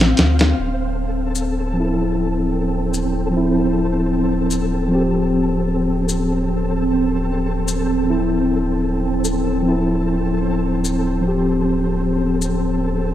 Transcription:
Already playing: A1 C4 F5
0.01 snare
0.17 D2, snare, closed hi-hat
0.39 snare, closed hi-hat
0.57 D1 C4 A4
1.35 maracas
1.73 F3 C4
1.80 E4
2.94 maracas
3.31 F3 C4
3.37 E4
4.51 maracas
4.89 F3 C4
4.95 G4
6.09 maracas
7.68 maracas
8.04 F3 C4
8.10 E4
9.25 maracas
9.63 F3 C4
9.69 E4
10.85 maracas
11.22 F3 C4
11.28 G4
12.42 maracas

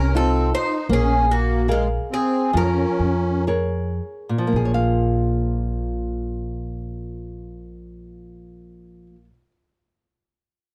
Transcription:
Already playing: C2 C3 C#4 A#4
0.15 C4 D#4 F4 A4
0.54 D#4 C5
0.89 A#1 A#3 C#4 G#4
1.30 A#3 F#4
1.68 G#3 F4 G#4 A#4 F5
2.11 C4 G#4
2.53 F2 F3 C#4 A#4
2.99 F2
3.47 G#4 A#4 C#5
4.29 A#2
4.38 F3
4.47 A#3
4.53 A#1 G#4
4.65 C#5
4.74 F5

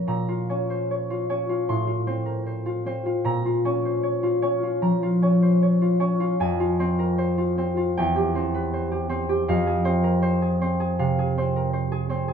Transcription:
Already playing: F3 C#4 A#4 C#5
0.07 A#2 A#5
0.29 F4
0.50 C#4 C#5
0.70 C5
0.91 C#5
1.10 F4
1.30 C#4 C#5
1.49 F4
1.69 A2 C6
1.87 F4
2.07 C4 C5
2.26 A#4
2.47 C5
2.66 F4
2.86 C4 C5
3.06 F4
3.24 A#2 A#5
3.45 F4
3.65 C#4 C#5
3.85 C5
4.03 C#5
4.23 F4
4.42 C#4 C#5
4.63 F4
4.82 F3 A#5
5.03 F4
5.22 C#4 C#5
5.43 C5
5.62 C#5
5.82 F4
6.00 C#4 C#5
6.20 F4
6.40 F2 G#5
6.60 F4
6.80 C4 C5
6.99 A#4
7.18 C5
7.38 F4
7.58 C4 C5
7.77 F4
7.98 E2 G5
8.16 G4
8.35 C4 C5
8.55 B4
8.74 C5
8.91 G4
9.09 C4 C5
9.29 G4
9.48 F2 F5
9.67 G#4
9.85 C4 C5
10.04 A#4
10.22 C5
10.42 G#4
10.61 C4 C5
10.80 G#4
10.99 C3 F5
11.19 G#4
11.38 C4 C5
11.56 A#4
11.73 C5
11.92 G#4
12.09 C4 C5
12.28 G#4

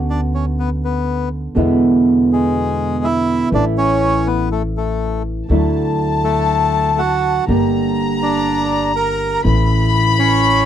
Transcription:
Already playing: D2 D3 B3 C#4 F#4
0.10 D4
0.35 C#4
0.59 B3
0.85 B3
1.55 E2 B2 D3 G#3 B3 E4
2.33 G#3
3.04 E4
3.50 A1 E3 A3 C#4 E4
3.54 D4
3.78 C#4
4.27 B3
4.52 A3
4.77 A3
5.48 D2 D3 F#3 A3 D4 E4 A5
6.24 A3
6.99 F#4
7.47 G1 D3 G3 A#3 D4 G4 A#5
8.23 D4
8.96 A#4
9.43 A1 E3 A3 C#4 E4 B5
10.19 C#4

